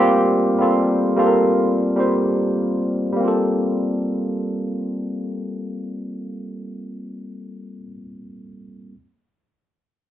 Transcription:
tine electric piano
Already playing: G3 A#3 C4 F4 A#4 C5
0.00 G4
0.58 G3 A#3 C4 F4 A4
1.16 G3 A#3 C4 F4 A4
1.27 A#4
1.96 G3 A#3 C4 F4
2.00 C5
3.13 G3 A#3
3.20 C4 F4
3.28 A4

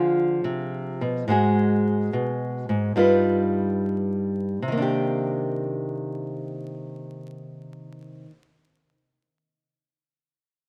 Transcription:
nylon-string guitar
Already playing: D3 F3 F4 G#4
0.44 C3
1.01 B2
1.28 G#2 G#3 F#4 G#4
2.13 B2
2.69 G#2
2.96 G2 G3 D#4 F4 B4
4.62 C3
4.68 D#3
4.72 A#3
4.78 D4
4.82 G4

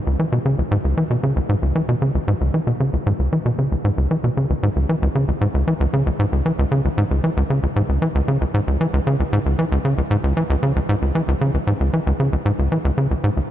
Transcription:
analog synth bass
0.07 C#2
0.19 E3
0.32 B2
0.46 C#3
0.59 C#2
0.71 G#2
0.85 C#2
0.97 E3
1.10 B2
1.23 C#3
1.36 C#2
1.49 G#2
1.62 C#2
1.75 E3
1.89 B2
2.02 C#3
2.15 C#2
2.28 G#2
2.41 C#2
2.54 E3
2.67 B2
2.80 C#3
2.93 C#2
3.06 G#2
3.19 C#2
3.33 E3
3.46 B2
3.59 C#3
3.72 C#2
3.85 G#2
3.98 C#2
4.11 E3
4.24 B2
4.37 C#3
4.50 C#2
4.63 G#2
4.76 C#2
4.89 E3
5.02 C#2
5.15 C#3
5.28 C#2
5.41 G#2
5.54 C#2
5.68 E3
5.80 C#2
5.93 C#3
6.06 C#2
6.19 G#2
6.32 C#2
6.46 E3
6.59 C#2
6.72 C#3
6.85 C#2
6.98 G#2
7.11 C#2
7.24 E3
7.37 C#2
7.50 C#3
7.63 C#2
7.76 G#2
7.89 C#2
8.02 E3
8.15 C#2
8.28 C#3
8.41 C#2
8.54 G#2
8.68 C#2
8.81 E3
8.93 C#2
9.07 C#3
9.20 C#2
9.33 G#2
9.46 C#2
9.59 E3
9.72 C#2
9.85 C#3
9.98 C#2
10.11 G#2
10.24 C#2
10.37 E3
10.50 C#2
10.63 C#3
10.76 C#2
10.89 G#2
11.02 C#2
11.15 E3
11.28 C#2
11.41 C#3
11.54 C#2
11.67 G#2
11.80 C#2
11.93 E3
12.07 C#2
12.20 C#3
12.33 C#2
12.46 G#2
12.59 C#2
12.72 E3
12.85 C#2
12.98 C#3
13.11 C#2
13.24 G#2
13.37 C#2

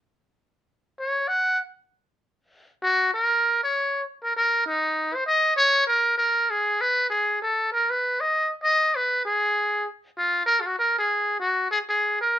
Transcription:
muted trumpet
0.99 C#5
1.28 F#5
2.83 F#4
3.14 A#4
3.63 C#5
4.24 A#4
4.36 A#4
4.67 D#4
5.15 C5
5.27 D#5
5.57 C#5
5.87 A#4
6.18 A#4
6.50 G#4
6.81 B4
7.10 G#4
7.42 A4
7.73 A#4
7.90 B4
8.20 D#5
8.63 D#5
8.96 B4
9.25 G#4
10.18 F4
10.46 A#4
10.61 F4
10.66 F#4
10.79 A#4
10.99 G#4
11.40 F#4
11.71 G#4
11.89 G#4
12.21 A#4

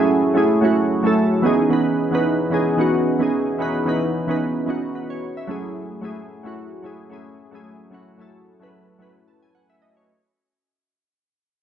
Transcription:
synth keys
Already playing: F#3 A3 C#4 E4 F#4
0.00 G#4
0.34 F#3 A3 C#4 E4 G#4
0.61 F#3 A3 C#4 E4 F#4
1.03 F#3 A3 C#4 E4 A4
1.42 E3 B3 C#4 D#4 G#4
1.69 E3 B3 C#4 D#4 B4
2.11 E3 B3 C#4 D#4 B4
2.50 E3 B3 C#4 D#4 G#4
2.77 E3 B3 C#4 D#4 F#4
3.19 E3 B3 C#4 D#4 G#4
3.58 E3 B3 C#4 D#4 B4
3.85 E3 B3 C#4 D#4 B4
4.27 E3 B3 C#4 D#4 B4
4.66 E3 B3 C#4 D#4 F#4
4.95 B4
5.10 C#5
5.37 E5
5.47 F#3 A3 C#4 E4 G#4
6.01 F#3 A3 C#4 E4 G#4
6.43 F#3 A3 C#4 E4 F#4
6.82 F#3 A3 C#4 E4 G#4
7.10 F#3 A3 C#4 E4 G#4
7.51 F#3 A3 C#4 E4 G#4
7.91 F#3 A3 C#4 E4 F#4
8.18 F#3 A3 C#4 E4 A4
8.60 F#3 A3 C#4 E4 B4
8.99 F#3 A3 C#4 E4 B4
9.28 A5
9.43 G#5
9.55 F#5
9.70 E5
9.82 D#5
9.97 C#5

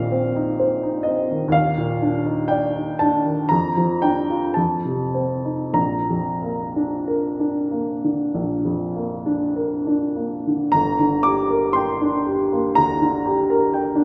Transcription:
upright piano
Already playing: A#1 A#2 D#3 C4 D#4 C5 D#5 F5
0.12 C4
0.36 D#4
0.60 C5
0.83 D#4
1.03 C4 D#5
1.31 D#3
1.48 D#2
1.52 F5
1.78 A#2
2.02 D4
2.26 D#4
2.48 D5 G5
2.75 D#4
2.99 D4 A5
3.25 D#3
3.49 F2 A#5
3.77 F3
4.02 D4 G5
4.30 F4
4.54 F2 A5
4.85 C3
5.15 C4
5.45 D#4
5.73 A#1 A#5
6.10 F2
6.43 A#3
6.76 D4
7.08 A#4
7.40 D4
7.71 A#3
8.04 D3
8.35 A#1
8.65 F2
8.96 A#3
9.26 D4
9.56 A#4
9.87 D4
10.16 A#3
10.47 D3
10.72 G1 A#5
10.99 D3
11.23 G4 D6
11.51 A#4
11.73 G5 C6
12.01 D4
12.27 G4
12.53 A#3
12.75 D2 A#5
13.02 D3
13.26 G4
13.50 A#4
13.74 G5
13.95 D4

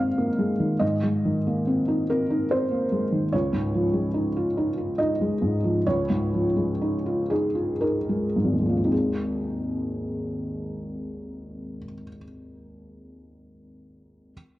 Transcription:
felt piano
Already playing: G#2 D#3 G#3 A#3 C4 D#4 D#5 F5
0.18 A#3
0.39 G#3
0.60 D#3
0.79 G#2 D#5
1.03 G#3
1.25 D#3
1.47 A#3
1.67 C4
1.88 D#4
2.10 C4 A#4
2.30 D#4
2.51 C4 C5
2.71 A#3
2.92 G#3
3.12 D#3
3.33 C#2 C#5
3.53 G#2
3.74 F3
3.93 G#3
4.14 D#4
4.37 F4
4.57 D#4
4.78 F4
4.98 D#4 D#5
5.21 G#3
5.42 G#2
5.64 F3
5.87 C#2 C#5
6.10 G#2
6.33 F3
6.56 G#3
6.82 D#4
7.06 F4
7.30 D#4 G#4
7.55 F4
7.81 D#4 A#4
8.09 G#3
8.36 G#2
8.44 G#1
8.53 D#2
8.60 G#3
8.65 F3 A#3
8.77 C4
8.85 D#4
8.92 G#4

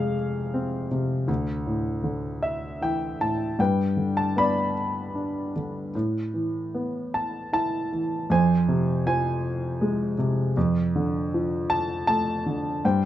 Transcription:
grand piano
Already playing: F2 C3 G#3 G#4 C5 F5 G#5
0.54 C4
0.91 C3
1.28 D2
1.66 A2
2.04 D3
2.42 E5
2.81 E3 G5
3.21 A2 A5
3.59 G2 B4 G5
3.97 D3
4.17 A5
4.36 B3 D5 B5
5.15 D4
5.56 D3
5.95 A2
6.34 E3
6.75 B3
7.14 A5
7.53 E4 A5
7.93 E3
8.30 F2 C5 G#5
8.68 C3
9.06 F3 C5 G#5
9.81 G#3
10.18 C3
10.57 F2
10.95 D3
11.34 F3
11.70 A5
12.07 A3 A5
12.46 D3
12.85 G2 C5 G5

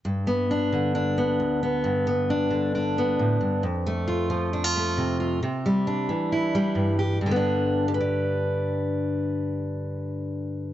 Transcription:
steel-string acoustic guitar
0.05 G2
0.27 B3
0.51 D4
0.72 D3
0.95 D4
1.18 B3
1.40 D2
1.63 B3
1.84 G2
2.07 B3
2.30 D4
2.50 D3
2.75 D4
2.98 B3
3.19 A2
3.41 G2
3.63 F2
3.86 A3
4.08 F4
4.30 F3
4.53 D4
4.64 F4
4.76 A3
4.97 C3
5.20 F4
5.43 C3
5.66 G3
5.87 D4
6.09 E3
6.32 E4
6.55 G3
6.75 G2
6.99 G4
7.21 G2
7.26 D3
7.31 B3
7.36 D4
7.88 G4
7.94 B4
8.01 D5

